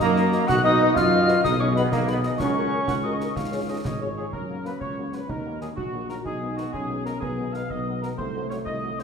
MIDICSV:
0, 0, Header, 1, 9, 480
1, 0, Start_track
1, 0, Key_signature, 6, "major"
1, 0, Tempo, 320684
1, 730, Time_signature, 6, 3, 24, 8
1, 13521, End_track
2, 0, Start_track
2, 0, Title_t, "Piccolo"
2, 0, Program_c, 0, 72
2, 1, Note_on_c, 0, 82, 105
2, 717, Note_on_c, 0, 90, 126
2, 739, Note_off_c, 0, 82, 0
2, 957, Note_off_c, 0, 90, 0
2, 966, Note_on_c, 0, 87, 114
2, 1413, Note_off_c, 0, 87, 0
2, 1439, Note_on_c, 0, 89, 112
2, 2111, Note_off_c, 0, 89, 0
2, 2157, Note_on_c, 0, 87, 118
2, 2403, Note_on_c, 0, 85, 102
2, 2426, Note_off_c, 0, 87, 0
2, 2637, Note_off_c, 0, 85, 0
2, 2646, Note_on_c, 0, 83, 97
2, 2736, Note_off_c, 0, 83, 0
2, 2885, Note_on_c, 0, 82, 93
2, 2975, Note_off_c, 0, 82, 0
2, 3118, Note_on_c, 0, 83, 93
2, 3208, Note_off_c, 0, 83, 0
2, 3355, Note_on_c, 0, 87, 80
2, 3445, Note_off_c, 0, 87, 0
2, 3554, Note_on_c, 0, 85, 97
2, 5675, Note_off_c, 0, 85, 0
2, 13521, End_track
3, 0, Start_track
3, 0, Title_t, "Woodwind section"
3, 0, Program_c, 1, 71
3, 0, Note_on_c, 1, 66, 75
3, 0, Note_on_c, 1, 75, 88
3, 667, Note_off_c, 1, 66, 0
3, 716, Note_off_c, 1, 75, 0
3, 731, Note_on_c, 1, 66, 93
3, 734, Note_on_c, 1, 75, 97
3, 2107, Note_off_c, 1, 66, 0
3, 2158, Note_on_c, 1, 68, 93
3, 3544, Note_off_c, 1, 75, 0
3, 3591, Note_on_c, 1, 70, 61
3, 3594, Note_on_c, 1, 78, 70
3, 3598, Note_off_c, 1, 68, 0
3, 4220, Note_off_c, 1, 70, 0
3, 4269, Note_off_c, 1, 78, 0
3, 4308, Note_on_c, 1, 78, 87
3, 4419, Note_off_c, 1, 78, 0
3, 4546, Note_on_c, 1, 75, 74
3, 4999, Note_off_c, 1, 75, 0
3, 5026, Note_on_c, 1, 77, 67
3, 5512, Note_off_c, 1, 77, 0
3, 5531, Note_on_c, 1, 75, 63
3, 5636, Note_off_c, 1, 75, 0
3, 5767, Note_on_c, 1, 75, 83
3, 5769, Note_on_c, 1, 73, 62
3, 5987, Note_off_c, 1, 73, 0
3, 6003, Note_off_c, 1, 75, 0
3, 6005, Note_on_c, 1, 73, 64
3, 6242, Note_on_c, 1, 68, 66
3, 6349, Note_off_c, 1, 68, 0
3, 6448, Note_off_c, 1, 73, 0
3, 6485, Note_on_c, 1, 70, 59
3, 6928, Note_off_c, 1, 70, 0
3, 6971, Note_on_c, 1, 71, 59
3, 7189, Note_off_c, 1, 71, 0
3, 7191, Note_on_c, 1, 73, 68
3, 7641, Note_off_c, 1, 73, 0
3, 7692, Note_on_c, 1, 71, 60
3, 7925, Note_off_c, 1, 71, 0
3, 7936, Note_on_c, 1, 70, 67
3, 8402, Note_on_c, 1, 68, 54
3, 8408, Note_off_c, 1, 70, 0
3, 8509, Note_off_c, 1, 68, 0
3, 8627, Note_on_c, 1, 66, 62
3, 9080, Note_off_c, 1, 66, 0
3, 9116, Note_on_c, 1, 70, 69
3, 9225, Note_off_c, 1, 70, 0
3, 9361, Note_on_c, 1, 68, 64
3, 9808, Note_off_c, 1, 68, 0
3, 9830, Note_on_c, 1, 66, 56
3, 10059, Note_off_c, 1, 66, 0
3, 10070, Note_on_c, 1, 68, 71
3, 10523, Note_off_c, 1, 68, 0
3, 10560, Note_on_c, 1, 70, 73
3, 10776, Note_on_c, 1, 68, 70
3, 10785, Note_off_c, 1, 70, 0
3, 11236, Note_off_c, 1, 68, 0
3, 11274, Note_on_c, 1, 77, 71
3, 11520, Note_off_c, 1, 77, 0
3, 11526, Note_on_c, 1, 75, 69
3, 12003, Note_on_c, 1, 70, 64
3, 12006, Note_off_c, 1, 75, 0
3, 12112, Note_off_c, 1, 70, 0
3, 12229, Note_on_c, 1, 72, 68
3, 12685, Note_off_c, 1, 72, 0
3, 12710, Note_on_c, 1, 73, 72
3, 12822, Note_off_c, 1, 73, 0
3, 12960, Note_on_c, 1, 75, 76
3, 13412, Note_off_c, 1, 75, 0
3, 13458, Note_on_c, 1, 72, 67
3, 13521, Note_off_c, 1, 72, 0
3, 13521, End_track
4, 0, Start_track
4, 0, Title_t, "Cornet"
4, 0, Program_c, 2, 56
4, 17, Note_on_c, 2, 70, 93
4, 682, Note_off_c, 2, 70, 0
4, 724, Note_on_c, 2, 78, 119
4, 833, Note_off_c, 2, 78, 0
4, 954, Note_on_c, 2, 75, 118
4, 1447, Note_on_c, 2, 77, 115
4, 1470, Note_off_c, 2, 75, 0
4, 2168, Note_on_c, 2, 75, 118
4, 2190, Note_off_c, 2, 77, 0
4, 2378, Note_off_c, 2, 75, 0
4, 2387, Note_on_c, 2, 73, 99
4, 2499, Note_off_c, 2, 73, 0
4, 2626, Note_on_c, 2, 71, 84
4, 2738, Note_off_c, 2, 71, 0
4, 2865, Note_on_c, 2, 70, 92
4, 3116, Note_on_c, 2, 71, 85
4, 3138, Note_off_c, 2, 70, 0
4, 3340, Note_off_c, 2, 71, 0
4, 3349, Note_on_c, 2, 75, 81
4, 3578, Note_off_c, 2, 75, 0
4, 3596, Note_on_c, 2, 73, 94
4, 5696, Note_off_c, 2, 73, 0
4, 6732, Note_on_c, 2, 66, 41
4, 6816, Note_off_c, 2, 66, 0
4, 6969, Note_on_c, 2, 66, 35
4, 7053, Note_off_c, 2, 66, 0
4, 7434, Note_on_c, 2, 66, 40
4, 7521, Note_off_c, 2, 66, 0
4, 7661, Note_on_c, 2, 66, 40
4, 7751, Note_off_c, 2, 66, 0
4, 8150, Note_on_c, 2, 66, 38
4, 8239, Note_off_c, 2, 66, 0
4, 8383, Note_on_c, 2, 66, 42
4, 8473, Note_off_c, 2, 66, 0
4, 8888, Note_on_c, 2, 66, 41
4, 8973, Note_off_c, 2, 66, 0
4, 9122, Note_on_c, 2, 66, 43
4, 9208, Note_off_c, 2, 66, 0
4, 9608, Note_on_c, 2, 63, 47
4, 9693, Note_off_c, 2, 63, 0
4, 9833, Note_on_c, 2, 63, 44
4, 9921, Note_off_c, 2, 63, 0
4, 10337, Note_on_c, 2, 63, 50
4, 10420, Note_off_c, 2, 63, 0
4, 10578, Note_on_c, 2, 63, 48
4, 10661, Note_off_c, 2, 63, 0
4, 11070, Note_on_c, 2, 63, 45
4, 11151, Note_off_c, 2, 63, 0
4, 11315, Note_on_c, 2, 63, 46
4, 11394, Note_off_c, 2, 63, 0
4, 11791, Note_on_c, 2, 63, 46
4, 11872, Note_off_c, 2, 63, 0
4, 12023, Note_on_c, 2, 63, 49
4, 12106, Note_off_c, 2, 63, 0
4, 12503, Note_on_c, 2, 66, 47
4, 12586, Note_off_c, 2, 66, 0
4, 12751, Note_on_c, 2, 66, 43
4, 12832, Note_off_c, 2, 66, 0
4, 13228, Note_on_c, 2, 66, 42
4, 13311, Note_off_c, 2, 66, 0
4, 13462, Note_on_c, 2, 66, 44
4, 13521, Note_off_c, 2, 66, 0
4, 13521, End_track
5, 0, Start_track
5, 0, Title_t, "Euphonium"
5, 0, Program_c, 3, 58
5, 6485, Note_on_c, 3, 61, 51
5, 7862, Note_off_c, 3, 61, 0
5, 7910, Note_on_c, 3, 63, 47
5, 8584, Note_off_c, 3, 63, 0
5, 8640, Note_on_c, 3, 66, 53
5, 9310, Note_off_c, 3, 66, 0
5, 9346, Note_on_c, 3, 63, 52
5, 10094, Note_on_c, 3, 61, 54
5, 10116, Note_off_c, 3, 63, 0
5, 10822, Note_on_c, 3, 59, 54
5, 10845, Note_off_c, 3, 61, 0
5, 12247, Note_off_c, 3, 59, 0
5, 12256, Note_on_c, 3, 57, 57
5, 13521, Note_off_c, 3, 57, 0
5, 13521, End_track
6, 0, Start_track
6, 0, Title_t, "Trombone section"
6, 0, Program_c, 4, 61
6, 3, Note_on_c, 4, 58, 123
6, 675, Note_off_c, 4, 58, 0
6, 701, Note_on_c, 4, 66, 127
6, 815, Note_off_c, 4, 66, 0
6, 950, Note_on_c, 4, 63, 126
6, 1404, Note_off_c, 4, 63, 0
6, 1415, Note_on_c, 4, 65, 127
6, 2119, Note_on_c, 4, 63, 120
6, 2150, Note_off_c, 4, 65, 0
6, 2238, Note_off_c, 4, 63, 0
6, 2403, Note_on_c, 4, 61, 106
6, 2511, Note_off_c, 4, 61, 0
6, 2635, Note_on_c, 4, 59, 101
6, 2847, Note_on_c, 4, 58, 117
6, 2862, Note_off_c, 4, 59, 0
6, 3087, Note_off_c, 4, 58, 0
6, 3135, Note_on_c, 4, 59, 101
6, 3240, Note_off_c, 4, 59, 0
6, 3345, Note_on_c, 4, 63, 95
6, 3457, Note_off_c, 4, 63, 0
6, 3568, Note_on_c, 4, 61, 112
6, 5682, Note_off_c, 4, 61, 0
6, 13521, End_track
7, 0, Start_track
7, 0, Title_t, "French horn section"
7, 0, Program_c, 5, 60
7, 239, Note_on_c, 5, 66, 74
7, 240, Note_on_c, 5, 70, 84
7, 244, Note_on_c, 5, 75, 76
7, 328, Note_off_c, 5, 66, 0
7, 329, Note_off_c, 5, 70, 0
7, 332, Note_off_c, 5, 75, 0
7, 477, Note_on_c, 5, 66, 79
7, 477, Note_on_c, 5, 75, 68
7, 478, Note_on_c, 5, 70, 75
7, 567, Note_off_c, 5, 66, 0
7, 567, Note_off_c, 5, 70, 0
7, 567, Note_off_c, 5, 75, 0
7, 963, Note_on_c, 5, 75, 76
7, 964, Note_on_c, 5, 66, 79
7, 968, Note_on_c, 5, 71, 74
7, 1051, Note_off_c, 5, 75, 0
7, 1052, Note_off_c, 5, 66, 0
7, 1054, Note_off_c, 5, 71, 0
7, 1198, Note_on_c, 5, 71, 78
7, 1201, Note_on_c, 5, 75, 78
7, 1204, Note_on_c, 5, 66, 80
7, 1287, Note_off_c, 5, 71, 0
7, 1289, Note_off_c, 5, 75, 0
7, 1291, Note_off_c, 5, 66, 0
7, 1674, Note_on_c, 5, 71, 81
7, 1676, Note_on_c, 5, 66, 72
7, 1678, Note_on_c, 5, 75, 78
7, 1764, Note_off_c, 5, 66, 0
7, 1764, Note_off_c, 5, 71, 0
7, 1766, Note_off_c, 5, 75, 0
7, 1903, Note_on_c, 5, 75, 83
7, 1908, Note_on_c, 5, 71, 84
7, 1909, Note_on_c, 5, 66, 77
7, 1994, Note_off_c, 5, 75, 0
7, 1999, Note_off_c, 5, 66, 0
7, 1999, Note_off_c, 5, 71, 0
7, 2398, Note_on_c, 5, 68, 73
7, 2404, Note_on_c, 5, 71, 70
7, 2407, Note_on_c, 5, 75, 75
7, 2486, Note_off_c, 5, 68, 0
7, 2490, Note_off_c, 5, 71, 0
7, 2493, Note_off_c, 5, 75, 0
7, 2630, Note_on_c, 5, 71, 74
7, 2631, Note_on_c, 5, 75, 81
7, 2632, Note_on_c, 5, 68, 73
7, 2719, Note_off_c, 5, 71, 0
7, 2720, Note_off_c, 5, 75, 0
7, 2721, Note_off_c, 5, 68, 0
7, 3104, Note_on_c, 5, 68, 68
7, 3107, Note_on_c, 5, 75, 68
7, 3111, Note_on_c, 5, 71, 59
7, 3195, Note_off_c, 5, 68, 0
7, 3197, Note_off_c, 5, 75, 0
7, 3200, Note_off_c, 5, 71, 0
7, 3367, Note_on_c, 5, 68, 69
7, 3369, Note_on_c, 5, 75, 59
7, 3373, Note_on_c, 5, 71, 62
7, 3452, Note_off_c, 5, 68, 0
7, 3454, Note_off_c, 5, 75, 0
7, 3457, Note_off_c, 5, 71, 0
7, 3853, Note_on_c, 5, 70, 59
7, 3856, Note_off_c, 5, 70, 0
7, 3856, Note_on_c, 5, 70, 64
7, 3859, Note_on_c, 5, 66, 58
7, 3939, Note_off_c, 5, 70, 0
7, 3941, Note_off_c, 5, 66, 0
7, 4086, Note_on_c, 5, 66, 63
7, 4088, Note_on_c, 5, 70, 60
7, 4092, Note_off_c, 5, 70, 0
7, 4092, Note_on_c, 5, 70, 60
7, 4171, Note_off_c, 5, 66, 0
7, 4175, Note_off_c, 5, 70, 0
7, 4567, Note_on_c, 5, 66, 61
7, 4568, Note_on_c, 5, 70, 58
7, 4570, Note_off_c, 5, 70, 0
7, 4570, Note_on_c, 5, 70, 58
7, 4652, Note_off_c, 5, 66, 0
7, 4654, Note_off_c, 5, 70, 0
7, 4800, Note_on_c, 5, 70, 59
7, 4806, Note_on_c, 5, 66, 52
7, 4810, Note_off_c, 5, 70, 0
7, 4810, Note_on_c, 5, 70, 55
7, 4891, Note_off_c, 5, 66, 0
7, 4894, Note_off_c, 5, 70, 0
7, 5275, Note_on_c, 5, 65, 55
7, 5277, Note_on_c, 5, 68, 58
7, 5278, Note_on_c, 5, 73, 61
7, 5362, Note_off_c, 5, 65, 0
7, 5363, Note_off_c, 5, 68, 0
7, 5364, Note_off_c, 5, 73, 0
7, 5515, Note_on_c, 5, 65, 62
7, 5521, Note_on_c, 5, 73, 55
7, 5523, Note_on_c, 5, 68, 58
7, 5602, Note_off_c, 5, 65, 0
7, 5607, Note_off_c, 5, 73, 0
7, 5608, Note_off_c, 5, 68, 0
7, 5998, Note_on_c, 5, 68, 52
7, 6010, Note_on_c, 5, 73, 50
7, 6011, Note_on_c, 5, 65, 57
7, 6085, Note_off_c, 5, 68, 0
7, 6094, Note_off_c, 5, 73, 0
7, 6095, Note_off_c, 5, 65, 0
7, 6249, Note_on_c, 5, 73, 53
7, 6253, Note_on_c, 5, 65, 52
7, 6256, Note_on_c, 5, 68, 55
7, 6333, Note_off_c, 5, 73, 0
7, 6336, Note_off_c, 5, 65, 0
7, 6338, Note_off_c, 5, 68, 0
7, 6722, Note_on_c, 5, 54, 42
7, 6724, Note_on_c, 5, 49, 40
7, 6726, Note_on_c, 5, 58, 36
7, 6808, Note_off_c, 5, 54, 0
7, 6809, Note_off_c, 5, 49, 0
7, 6810, Note_off_c, 5, 58, 0
7, 6959, Note_on_c, 5, 54, 42
7, 6961, Note_on_c, 5, 58, 44
7, 6962, Note_on_c, 5, 49, 37
7, 7045, Note_off_c, 5, 54, 0
7, 7047, Note_off_c, 5, 49, 0
7, 7047, Note_off_c, 5, 58, 0
7, 7453, Note_on_c, 5, 49, 40
7, 7458, Note_on_c, 5, 54, 41
7, 7458, Note_on_c, 5, 58, 39
7, 7537, Note_off_c, 5, 49, 0
7, 7540, Note_off_c, 5, 54, 0
7, 7540, Note_off_c, 5, 58, 0
7, 7686, Note_on_c, 5, 54, 39
7, 7692, Note_on_c, 5, 58, 38
7, 7693, Note_on_c, 5, 49, 36
7, 7770, Note_off_c, 5, 54, 0
7, 7776, Note_off_c, 5, 49, 0
7, 7776, Note_off_c, 5, 58, 0
7, 8156, Note_on_c, 5, 51, 39
7, 8160, Note_on_c, 5, 58, 43
7, 8162, Note_on_c, 5, 54, 39
7, 8243, Note_off_c, 5, 51, 0
7, 8246, Note_off_c, 5, 58, 0
7, 8248, Note_off_c, 5, 54, 0
7, 8389, Note_on_c, 5, 54, 43
7, 8393, Note_on_c, 5, 58, 42
7, 8396, Note_on_c, 5, 51, 42
7, 8477, Note_off_c, 5, 54, 0
7, 8481, Note_off_c, 5, 58, 0
7, 8483, Note_off_c, 5, 51, 0
7, 8865, Note_on_c, 5, 51, 39
7, 8867, Note_on_c, 5, 54, 43
7, 8873, Note_on_c, 5, 58, 42
7, 8955, Note_off_c, 5, 51, 0
7, 8956, Note_off_c, 5, 54, 0
7, 8961, Note_off_c, 5, 58, 0
7, 9111, Note_on_c, 5, 54, 42
7, 9117, Note_on_c, 5, 51, 39
7, 9118, Note_on_c, 5, 58, 38
7, 9199, Note_off_c, 5, 54, 0
7, 9204, Note_off_c, 5, 51, 0
7, 9205, Note_off_c, 5, 58, 0
7, 9601, Note_on_c, 5, 59, 45
7, 9607, Note_on_c, 5, 56, 39
7, 9608, Note_on_c, 5, 51, 44
7, 9687, Note_off_c, 5, 59, 0
7, 9692, Note_off_c, 5, 56, 0
7, 9693, Note_off_c, 5, 51, 0
7, 9839, Note_on_c, 5, 51, 47
7, 9841, Note_on_c, 5, 59, 48
7, 9846, Note_on_c, 5, 56, 43
7, 9926, Note_off_c, 5, 51, 0
7, 9927, Note_off_c, 5, 59, 0
7, 9931, Note_off_c, 5, 56, 0
7, 10309, Note_on_c, 5, 59, 42
7, 10311, Note_on_c, 5, 51, 47
7, 10311, Note_on_c, 5, 56, 47
7, 10399, Note_off_c, 5, 59, 0
7, 10400, Note_off_c, 5, 56, 0
7, 10401, Note_off_c, 5, 51, 0
7, 10562, Note_on_c, 5, 56, 46
7, 10564, Note_on_c, 5, 51, 42
7, 10564, Note_on_c, 5, 59, 46
7, 10648, Note_off_c, 5, 56, 0
7, 10650, Note_off_c, 5, 51, 0
7, 10650, Note_off_c, 5, 59, 0
7, 11039, Note_on_c, 5, 59, 42
7, 11046, Note_on_c, 5, 56, 42
7, 11048, Note_on_c, 5, 51, 47
7, 11126, Note_off_c, 5, 59, 0
7, 11132, Note_off_c, 5, 56, 0
7, 11133, Note_off_c, 5, 51, 0
7, 11292, Note_on_c, 5, 51, 52
7, 11296, Note_on_c, 5, 56, 51
7, 11296, Note_on_c, 5, 59, 51
7, 11377, Note_off_c, 5, 51, 0
7, 11380, Note_off_c, 5, 56, 0
7, 11380, Note_off_c, 5, 59, 0
7, 11766, Note_on_c, 5, 51, 48
7, 11769, Note_on_c, 5, 59, 47
7, 11770, Note_on_c, 5, 56, 51
7, 11853, Note_off_c, 5, 51, 0
7, 11855, Note_off_c, 5, 59, 0
7, 11856, Note_off_c, 5, 56, 0
7, 12023, Note_on_c, 5, 51, 43
7, 12028, Note_on_c, 5, 56, 47
7, 12028, Note_on_c, 5, 59, 50
7, 12106, Note_off_c, 5, 51, 0
7, 12109, Note_off_c, 5, 56, 0
7, 12110, Note_off_c, 5, 59, 0
7, 12490, Note_on_c, 5, 51, 47
7, 12495, Note_on_c, 5, 54, 49
7, 12499, Note_on_c, 5, 57, 46
7, 12576, Note_off_c, 5, 51, 0
7, 12580, Note_off_c, 5, 54, 0
7, 12583, Note_off_c, 5, 57, 0
7, 12736, Note_on_c, 5, 57, 53
7, 12739, Note_on_c, 5, 54, 52
7, 12742, Note_on_c, 5, 51, 48
7, 12821, Note_off_c, 5, 57, 0
7, 12823, Note_off_c, 5, 54, 0
7, 12825, Note_off_c, 5, 51, 0
7, 13213, Note_on_c, 5, 54, 46
7, 13213, Note_on_c, 5, 57, 46
7, 13214, Note_on_c, 5, 51, 48
7, 13298, Note_off_c, 5, 54, 0
7, 13299, Note_off_c, 5, 57, 0
7, 13300, Note_off_c, 5, 51, 0
7, 13463, Note_on_c, 5, 54, 44
7, 13463, Note_on_c, 5, 57, 42
7, 13465, Note_on_c, 5, 51, 44
7, 13521, Note_off_c, 5, 51, 0
7, 13521, Note_off_c, 5, 54, 0
7, 13521, Note_off_c, 5, 57, 0
7, 13521, End_track
8, 0, Start_track
8, 0, Title_t, "Tuba"
8, 0, Program_c, 6, 58
8, 15, Note_on_c, 6, 42, 109
8, 611, Note_off_c, 6, 42, 0
8, 735, Note_on_c, 6, 35, 91
8, 1331, Note_off_c, 6, 35, 0
8, 1450, Note_on_c, 6, 42, 98
8, 2047, Note_off_c, 6, 42, 0
8, 2167, Note_on_c, 6, 35, 109
8, 2765, Note_off_c, 6, 35, 0
8, 2871, Note_on_c, 6, 35, 97
8, 3409, Note_off_c, 6, 35, 0
8, 3591, Note_on_c, 6, 37, 83
8, 4195, Note_off_c, 6, 37, 0
8, 4327, Note_on_c, 6, 37, 80
8, 4923, Note_off_c, 6, 37, 0
8, 5054, Note_on_c, 6, 37, 71
8, 5646, Note_off_c, 6, 37, 0
8, 5770, Note_on_c, 6, 32, 70
8, 6364, Note_off_c, 6, 32, 0
8, 6488, Note_on_c, 6, 42, 52
8, 7083, Note_off_c, 6, 42, 0
8, 7206, Note_on_c, 6, 37, 50
8, 7802, Note_off_c, 6, 37, 0
8, 7926, Note_on_c, 6, 39, 50
8, 8523, Note_off_c, 6, 39, 0
8, 8647, Note_on_c, 6, 34, 58
8, 9244, Note_off_c, 6, 34, 0
8, 9372, Note_on_c, 6, 35, 57
8, 9967, Note_off_c, 6, 35, 0
8, 10103, Note_on_c, 6, 35, 59
8, 10694, Note_off_c, 6, 35, 0
8, 10828, Note_on_c, 6, 35, 61
8, 11417, Note_off_c, 6, 35, 0
8, 11545, Note_on_c, 6, 35, 66
8, 12136, Note_off_c, 6, 35, 0
8, 12263, Note_on_c, 6, 36, 61
8, 12856, Note_off_c, 6, 36, 0
8, 12990, Note_on_c, 6, 36, 63
8, 13521, Note_off_c, 6, 36, 0
8, 13521, End_track
9, 0, Start_track
9, 0, Title_t, "Drums"
9, 1, Note_on_c, 9, 35, 79
9, 1, Note_on_c, 9, 38, 80
9, 150, Note_off_c, 9, 35, 0
9, 150, Note_off_c, 9, 38, 0
9, 248, Note_on_c, 9, 38, 53
9, 397, Note_off_c, 9, 38, 0
9, 483, Note_on_c, 9, 38, 58
9, 633, Note_off_c, 9, 38, 0
9, 737, Note_on_c, 9, 35, 88
9, 737, Note_on_c, 9, 38, 87
9, 737, Note_on_c, 9, 49, 38
9, 887, Note_off_c, 9, 35, 0
9, 887, Note_off_c, 9, 38, 0
9, 887, Note_off_c, 9, 49, 0
9, 1443, Note_on_c, 9, 35, 87
9, 1443, Note_on_c, 9, 38, 84
9, 1593, Note_off_c, 9, 35, 0
9, 1593, Note_off_c, 9, 38, 0
9, 1921, Note_on_c, 9, 38, 60
9, 2070, Note_off_c, 9, 38, 0
9, 2165, Note_on_c, 9, 35, 88
9, 2165, Note_on_c, 9, 38, 84
9, 2314, Note_off_c, 9, 35, 0
9, 2314, Note_off_c, 9, 38, 0
9, 2639, Note_on_c, 9, 38, 51
9, 2789, Note_off_c, 9, 38, 0
9, 2875, Note_on_c, 9, 35, 80
9, 2875, Note_on_c, 9, 38, 75
9, 3024, Note_off_c, 9, 35, 0
9, 3024, Note_off_c, 9, 38, 0
9, 3106, Note_on_c, 9, 38, 50
9, 3256, Note_off_c, 9, 38, 0
9, 3342, Note_on_c, 9, 38, 51
9, 3492, Note_off_c, 9, 38, 0
9, 3589, Note_on_c, 9, 35, 84
9, 3589, Note_on_c, 9, 38, 81
9, 3739, Note_off_c, 9, 35, 0
9, 3739, Note_off_c, 9, 38, 0
9, 4308, Note_on_c, 9, 35, 77
9, 4308, Note_on_c, 9, 38, 74
9, 4457, Note_off_c, 9, 35, 0
9, 4457, Note_off_c, 9, 38, 0
9, 4798, Note_on_c, 9, 38, 53
9, 4948, Note_off_c, 9, 38, 0
9, 5032, Note_on_c, 9, 35, 94
9, 5032, Note_on_c, 9, 38, 66
9, 5182, Note_off_c, 9, 35, 0
9, 5182, Note_off_c, 9, 38, 0
9, 5761, Note_on_c, 9, 35, 83
9, 5761, Note_on_c, 9, 38, 67
9, 5911, Note_off_c, 9, 35, 0
9, 5911, Note_off_c, 9, 38, 0
9, 6481, Note_on_c, 9, 35, 62
9, 6631, Note_off_c, 9, 35, 0
9, 6964, Note_on_c, 9, 38, 27
9, 7114, Note_off_c, 9, 38, 0
9, 7202, Note_on_c, 9, 35, 53
9, 7352, Note_off_c, 9, 35, 0
9, 7674, Note_on_c, 9, 38, 30
9, 7823, Note_off_c, 9, 38, 0
9, 7923, Note_on_c, 9, 35, 72
9, 8073, Note_off_c, 9, 35, 0
9, 8396, Note_on_c, 9, 38, 28
9, 8546, Note_off_c, 9, 38, 0
9, 8646, Note_on_c, 9, 35, 59
9, 8795, Note_off_c, 9, 35, 0
9, 9119, Note_on_c, 9, 38, 30
9, 9269, Note_off_c, 9, 38, 0
9, 9363, Note_on_c, 9, 35, 62
9, 9512, Note_off_c, 9, 35, 0
9, 9845, Note_on_c, 9, 38, 32
9, 9995, Note_off_c, 9, 38, 0
9, 10086, Note_on_c, 9, 35, 63
9, 10236, Note_off_c, 9, 35, 0
9, 10563, Note_on_c, 9, 38, 31
9, 10713, Note_off_c, 9, 38, 0
9, 10809, Note_on_c, 9, 35, 70
9, 10959, Note_off_c, 9, 35, 0
9, 11286, Note_on_c, 9, 38, 30
9, 11436, Note_off_c, 9, 38, 0
9, 11527, Note_on_c, 9, 35, 58
9, 11676, Note_off_c, 9, 35, 0
9, 12019, Note_on_c, 9, 38, 33
9, 12169, Note_off_c, 9, 38, 0
9, 12249, Note_on_c, 9, 35, 73
9, 12399, Note_off_c, 9, 35, 0
9, 12733, Note_on_c, 9, 38, 29
9, 12883, Note_off_c, 9, 38, 0
9, 12966, Note_on_c, 9, 35, 60
9, 13116, Note_off_c, 9, 35, 0
9, 13454, Note_on_c, 9, 38, 34
9, 13521, Note_off_c, 9, 38, 0
9, 13521, End_track
0, 0, End_of_file